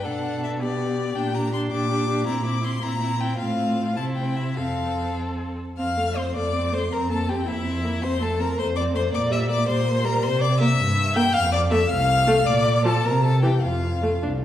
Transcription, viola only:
0, 0, Header, 1, 2, 480
1, 0, Start_track
1, 0, Key_signature, -1, "major"
1, 0, Tempo, 369686
1, 71, Time_signature, 6, 3, 24, 8
1, 3912, Tempo, 393185
1, 8232, Tempo, 369231
1, 15432, Tempo, 389358
1, 18339, End_track
2, 0, Start_track
2, 0, Title_t, "Viola"
2, 0, Program_c, 0, 41
2, 60, Note_on_c, 0, 62, 47
2, 787, Note_on_c, 0, 59, 47
2, 807, Note_off_c, 0, 62, 0
2, 1499, Note_off_c, 0, 59, 0
2, 1506, Note_on_c, 0, 62, 51
2, 1745, Note_off_c, 0, 62, 0
2, 1755, Note_on_c, 0, 62, 43
2, 1987, Note_off_c, 0, 62, 0
2, 1995, Note_on_c, 0, 62, 48
2, 2229, Note_off_c, 0, 62, 0
2, 2249, Note_on_c, 0, 62, 47
2, 2475, Note_off_c, 0, 62, 0
2, 2482, Note_on_c, 0, 62, 49
2, 2710, Note_off_c, 0, 62, 0
2, 2720, Note_on_c, 0, 62, 48
2, 2940, Note_off_c, 0, 62, 0
2, 2948, Note_on_c, 0, 60, 53
2, 3185, Note_off_c, 0, 60, 0
2, 3194, Note_on_c, 0, 60, 48
2, 3428, Note_off_c, 0, 60, 0
2, 3437, Note_on_c, 0, 60, 43
2, 3668, Note_off_c, 0, 60, 0
2, 3676, Note_on_c, 0, 60, 48
2, 3910, Note_off_c, 0, 60, 0
2, 3917, Note_on_c, 0, 60, 48
2, 4142, Note_off_c, 0, 60, 0
2, 4155, Note_on_c, 0, 60, 47
2, 4370, Note_off_c, 0, 60, 0
2, 4377, Note_on_c, 0, 60, 53
2, 5034, Note_off_c, 0, 60, 0
2, 5086, Note_on_c, 0, 60, 48
2, 5801, Note_off_c, 0, 60, 0
2, 5810, Note_on_c, 0, 60, 50
2, 7026, Note_off_c, 0, 60, 0
2, 7288, Note_on_c, 0, 60, 47
2, 7525, Note_on_c, 0, 57, 43
2, 7543, Note_off_c, 0, 60, 0
2, 7761, Note_on_c, 0, 60, 39
2, 7779, Note_off_c, 0, 57, 0
2, 8002, Note_on_c, 0, 57, 42
2, 8020, Note_off_c, 0, 60, 0
2, 8216, Note_off_c, 0, 57, 0
2, 8223, Note_on_c, 0, 60, 42
2, 8458, Note_on_c, 0, 57, 43
2, 8477, Note_off_c, 0, 60, 0
2, 8688, Note_off_c, 0, 57, 0
2, 8696, Note_on_c, 0, 60, 47
2, 8936, Note_on_c, 0, 58, 45
2, 8955, Note_off_c, 0, 60, 0
2, 9185, Note_on_c, 0, 60, 44
2, 9205, Note_off_c, 0, 58, 0
2, 9418, Note_on_c, 0, 58, 48
2, 9437, Note_off_c, 0, 60, 0
2, 9664, Note_off_c, 0, 58, 0
2, 9672, Note_on_c, 0, 60, 46
2, 9910, Note_on_c, 0, 58, 48
2, 9929, Note_off_c, 0, 60, 0
2, 10147, Note_off_c, 0, 58, 0
2, 10155, Note_on_c, 0, 60, 51
2, 10388, Note_on_c, 0, 57, 46
2, 10408, Note_off_c, 0, 60, 0
2, 10635, Note_on_c, 0, 60, 43
2, 10654, Note_off_c, 0, 57, 0
2, 10875, Note_on_c, 0, 57, 47
2, 10895, Note_off_c, 0, 60, 0
2, 11095, Note_off_c, 0, 57, 0
2, 11103, Note_on_c, 0, 60, 48
2, 11337, Note_on_c, 0, 57, 52
2, 11357, Note_off_c, 0, 60, 0
2, 11569, Note_off_c, 0, 57, 0
2, 11577, Note_on_c, 0, 58, 56
2, 11812, Note_on_c, 0, 55, 53
2, 11832, Note_off_c, 0, 58, 0
2, 12054, Note_on_c, 0, 58, 51
2, 12073, Note_off_c, 0, 55, 0
2, 12301, Note_on_c, 0, 55, 58
2, 12321, Note_off_c, 0, 58, 0
2, 12528, Note_off_c, 0, 55, 0
2, 12535, Note_on_c, 0, 58, 54
2, 12776, Note_on_c, 0, 55, 58
2, 12795, Note_off_c, 0, 58, 0
2, 13016, Note_off_c, 0, 55, 0
2, 13498, Note_on_c, 0, 58, 70
2, 13610, Note_off_c, 0, 58, 0
2, 14215, Note_on_c, 0, 58, 76
2, 14329, Note_off_c, 0, 58, 0
2, 14939, Note_on_c, 0, 57, 77
2, 15054, Note_off_c, 0, 57, 0
2, 15653, Note_on_c, 0, 57, 79
2, 15766, Note_off_c, 0, 57, 0
2, 16367, Note_on_c, 0, 53, 64
2, 16479, Note_off_c, 0, 53, 0
2, 17080, Note_on_c, 0, 52, 58
2, 17196, Note_off_c, 0, 52, 0
2, 17813, Note_on_c, 0, 57, 51
2, 17930, Note_off_c, 0, 57, 0
2, 18061, Note_on_c, 0, 62, 61
2, 18159, Note_off_c, 0, 62, 0
2, 18339, End_track
0, 0, End_of_file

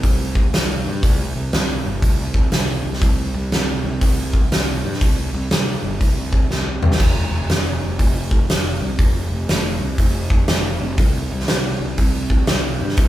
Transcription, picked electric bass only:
0, 0, Header, 1, 2, 480
1, 0, Start_track
1, 0, Tempo, 497925
1, 991, Time_signature, 4, 2, 24, 8
1, 12610, End_track
2, 0, Start_track
2, 0, Title_t, "Picked electric bass"
2, 0, Program_c, 0, 34
2, 35, Note_on_c, 0, 36, 86
2, 450, Note_off_c, 0, 36, 0
2, 517, Note_on_c, 0, 36, 88
2, 782, Note_off_c, 0, 36, 0
2, 830, Note_on_c, 0, 43, 85
2, 974, Note_off_c, 0, 43, 0
2, 994, Note_on_c, 0, 36, 89
2, 1260, Note_off_c, 0, 36, 0
2, 1307, Note_on_c, 0, 36, 90
2, 1452, Note_off_c, 0, 36, 0
2, 1481, Note_on_c, 0, 36, 83
2, 1743, Note_off_c, 0, 36, 0
2, 1793, Note_on_c, 0, 31, 88
2, 1935, Note_off_c, 0, 31, 0
2, 1956, Note_on_c, 0, 36, 77
2, 2370, Note_off_c, 0, 36, 0
2, 2439, Note_on_c, 0, 36, 81
2, 2702, Note_off_c, 0, 36, 0
2, 2749, Note_on_c, 0, 36, 84
2, 2893, Note_off_c, 0, 36, 0
2, 2911, Note_on_c, 0, 36, 97
2, 3177, Note_off_c, 0, 36, 0
2, 3219, Note_on_c, 0, 36, 94
2, 3367, Note_off_c, 0, 36, 0
2, 3392, Note_on_c, 0, 36, 86
2, 3658, Note_off_c, 0, 36, 0
2, 3698, Note_on_c, 0, 36, 88
2, 3846, Note_off_c, 0, 36, 0
2, 3871, Note_on_c, 0, 36, 85
2, 4286, Note_off_c, 0, 36, 0
2, 4355, Note_on_c, 0, 36, 80
2, 4619, Note_off_c, 0, 36, 0
2, 4664, Note_on_c, 0, 43, 89
2, 4809, Note_off_c, 0, 43, 0
2, 4837, Note_on_c, 0, 36, 88
2, 5100, Note_off_c, 0, 36, 0
2, 5145, Note_on_c, 0, 36, 87
2, 5290, Note_off_c, 0, 36, 0
2, 5313, Note_on_c, 0, 36, 83
2, 5578, Note_off_c, 0, 36, 0
2, 5621, Note_on_c, 0, 31, 82
2, 5767, Note_off_c, 0, 31, 0
2, 5793, Note_on_c, 0, 36, 81
2, 6207, Note_off_c, 0, 36, 0
2, 6271, Note_on_c, 0, 36, 82
2, 6536, Note_off_c, 0, 36, 0
2, 6575, Note_on_c, 0, 36, 88
2, 6724, Note_off_c, 0, 36, 0
2, 6750, Note_on_c, 0, 29, 91
2, 7016, Note_off_c, 0, 29, 0
2, 7060, Note_on_c, 0, 29, 92
2, 7207, Note_off_c, 0, 29, 0
2, 7225, Note_on_c, 0, 29, 86
2, 7493, Note_off_c, 0, 29, 0
2, 7533, Note_on_c, 0, 29, 85
2, 7683, Note_off_c, 0, 29, 0
2, 7708, Note_on_c, 0, 29, 88
2, 8124, Note_off_c, 0, 29, 0
2, 8182, Note_on_c, 0, 29, 85
2, 8452, Note_off_c, 0, 29, 0
2, 8491, Note_on_c, 0, 36, 89
2, 8642, Note_off_c, 0, 36, 0
2, 8668, Note_on_c, 0, 29, 87
2, 8935, Note_off_c, 0, 29, 0
2, 8967, Note_on_c, 0, 29, 98
2, 9120, Note_off_c, 0, 29, 0
2, 9149, Note_on_c, 0, 29, 88
2, 9416, Note_off_c, 0, 29, 0
2, 9449, Note_on_c, 0, 36, 86
2, 9601, Note_off_c, 0, 36, 0
2, 9624, Note_on_c, 0, 29, 83
2, 10043, Note_off_c, 0, 29, 0
2, 10112, Note_on_c, 0, 29, 84
2, 10378, Note_off_c, 0, 29, 0
2, 10415, Note_on_c, 0, 29, 92
2, 10565, Note_off_c, 0, 29, 0
2, 10587, Note_on_c, 0, 36, 86
2, 10856, Note_off_c, 0, 36, 0
2, 10904, Note_on_c, 0, 36, 96
2, 11051, Note_off_c, 0, 36, 0
2, 11070, Note_on_c, 0, 36, 83
2, 11338, Note_off_c, 0, 36, 0
2, 11380, Note_on_c, 0, 36, 85
2, 11529, Note_off_c, 0, 36, 0
2, 11554, Note_on_c, 0, 36, 94
2, 11970, Note_off_c, 0, 36, 0
2, 12038, Note_on_c, 0, 36, 84
2, 12303, Note_off_c, 0, 36, 0
2, 12350, Note_on_c, 0, 43, 96
2, 12495, Note_off_c, 0, 43, 0
2, 12509, Note_on_c, 0, 36, 97
2, 12610, Note_off_c, 0, 36, 0
2, 12610, End_track
0, 0, End_of_file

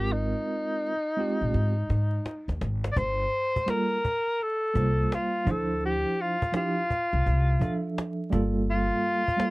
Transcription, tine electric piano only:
0, 0, Header, 1, 2, 480
1, 0, Start_track
1, 0, Tempo, 714286
1, 74, Time_signature, 4, 2, 24, 8
1, 6386, End_track
2, 0, Start_track
2, 0, Title_t, "Tine electric piano"
2, 0, Program_c, 0, 4
2, 0, Note_on_c, 0, 56, 77
2, 0, Note_on_c, 0, 60, 76
2, 0, Note_on_c, 0, 65, 72
2, 0, Note_on_c, 0, 70, 87
2, 608, Note_off_c, 0, 56, 0
2, 614, Note_off_c, 0, 60, 0
2, 618, Note_off_c, 0, 65, 0
2, 622, Note_off_c, 0, 70, 0
2, 785, Note_on_c, 0, 56, 77
2, 792, Note_on_c, 0, 60, 73
2, 799, Note_on_c, 0, 65, 76
2, 808, Note_on_c, 0, 67, 85
2, 1153, Note_off_c, 0, 56, 0
2, 1157, Note_off_c, 0, 60, 0
2, 1160, Note_off_c, 0, 65, 0
2, 1165, Note_off_c, 0, 67, 0
2, 2461, Note_on_c, 0, 55, 74
2, 2471, Note_on_c, 0, 58, 69
2, 2480, Note_on_c, 0, 65, 73
2, 2488, Note_on_c, 0, 69, 81
2, 2656, Note_off_c, 0, 55, 0
2, 2661, Note_off_c, 0, 58, 0
2, 2666, Note_off_c, 0, 65, 0
2, 2670, Note_off_c, 0, 69, 0
2, 3184, Note_on_c, 0, 55, 61
2, 3191, Note_on_c, 0, 58, 60
2, 3200, Note_on_c, 0, 65, 61
2, 3209, Note_on_c, 0, 72, 71
2, 3662, Note_on_c, 0, 53, 75
2, 3669, Note_off_c, 0, 55, 0
2, 3672, Note_off_c, 0, 58, 0
2, 3672, Note_on_c, 0, 62, 71
2, 3677, Note_off_c, 0, 65, 0
2, 3678, Note_on_c, 0, 64, 70
2, 3681, Note_off_c, 0, 72, 0
2, 3689, Note_on_c, 0, 72, 84
2, 4272, Note_off_c, 0, 53, 0
2, 4277, Note_off_c, 0, 62, 0
2, 4280, Note_off_c, 0, 64, 0
2, 4285, Note_off_c, 0, 72, 0
2, 4383, Note_on_c, 0, 53, 74
2, 4395, Note_on_c, 0, 62, 68
2, 4400, Note_on_c, 0, 64, 70
2, 4408, Note_on_c, 0, 67, 89
2, 4577, Note_off_c, 0, 53, 0
2, 4583, Note_off_c, 0, 62, 0
2, 4586, Note_off_c, 0, 64, 0
2, 4590, Note_off_c, 0, 67, 0
2, 5103, Note_on_c, 0, 53, 73
2, 5112, Note_on_c, 0, 62, 67
2, 5119, Note_on_c, 0, 76, 68
2, 5130, Note_on_c, 0, 69, 84
2, 5578, Note_on_c, 0, 55, 94
2, 5586, Note_on_c, 0, 58, 88
2, 5588, Note_off_c, 0, 53, 0
2, 5592, Note_on_c, 0, 65, 84
2, 5593, Note_off_c, 0, 62, 0
2, 5596, Note_off_c, 0, 69, 0
2, 5596, Note_off_c, 0, 76, 0
2, 5604, Note_on_c, 0, 69, 110
2, 6190, Note_off_c, 0, 55, 0
2, 6193, Note_off_c, 0, 58, 0
2, 6197, Note_off_c, 0, 65, 0
2, 6203, Note_off_c, 0, 69, 0
2, 6295, Note_on_c, 0, 55, 80
2, 6302, Note_on_c, 0, 58, 71
2, 6313, Note_on_c, 0, 65, 70
2, 6321, Note_on_c, 0, 69, 81
2, 6386, Note_off_c, 0, 55, 0
2, 6386, Note_off_c, 0, 58, 0
2, 6386, Note_off_c, 0, 65, 0
2, 6386, Note_off_c, 0, 69, 0
2, 6386, End_track
0, 0, End_of_file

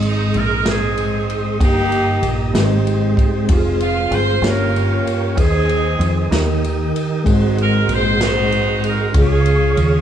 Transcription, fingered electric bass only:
0, 0, Header, 1, 2, 480
1, 0, Start_track
1, 0, Key_signature, -4, "major"
1, 0, Tempo, 628272
1, 1227, Time_signature, 6, 3, 24, 8
1, 7648, End_track
2, 0, Start_track
2, 0, Title_t, "Fingered electric bass"
2, 0, Program_c, 0, 33
2, 0, Note_on_c, 0, 32, 113
2, 234, Note_off_c, 0, 32, 0
2, 267, Note_on_c, 0, 34, 87
2, 1197, Note_off_c, 0, 34, 0
2, 1223, Note_on_c, 0, 31, 111
2, 1675, Note_off_c, 0, 31, 0
2, 1699, Note_on_c, 0, 34, 86
2, 1924, Note_off_c, 0, 34, 0
2, 1937, Note_on_c, 0, 32, 107
2, 2393, Note_off_c, 0, 32, 0
2, 2666, Note_on_c, 0, 29, 102
2, 3117, Note_off_c, 0, 29, 0
2, 3138, Note_on_c, 0, 31, 93
2, 3364, Note_off_c, 0, 31, 0
2, 3376, Note_on_c, 0, 31, 110
2, 3832, Note_off_c, 0, 31, 0
2, 4102, Note_on_c, 0, 39, 113
2, 4555, Note_off_c, 0, 39, 0
2, 4578, Note_on_c, 0, 41, 88
2, 4804, Note_off_c, 0, 41, 0
2, 4823, Note_on_c, 0, 39, 114
2, 5275, Note_off_c, 0, 39, 0
2, 5545, Note_on_c, 0, 32, 110
2, 5996, Note_off_c, 0, 32, 0
2, 6021, Note_on_c, 0, 34, 84
2, 6954, Note_off_c, 0, 34, 0
2, 6985, Note_on_c, 0, 37, 110
2, 7436, Note_off_c, 0, 37, 0
2, 7464, Note_on_c, 0, 39, 82
2, 7648, Note_off_c, 0, 39, 0
2, 7648, End_track
0, 0, End_of_file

